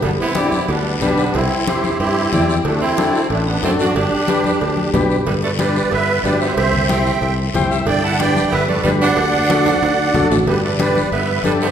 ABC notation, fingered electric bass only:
X:1
M:4/4
L:1/8
Q:1/4=184
K:G
V:1 name="Fingered electric bass" clef=bass
G,,, z3 D,,2 B,,,2 | C,, z3 G,,2 E,,2 | D,, z3 A,,,2 F,,2 | G,,, z3 D,,2 B,,,2 |
G,,,4 G,,,2 G,,,2 | C,,4 C,,2 C,,2 | G,,,4 G,,,2 G,,,2 | D,,4 D,,2 B,,, A,,, |
G,,,4 G,,,2 G,,,2 |]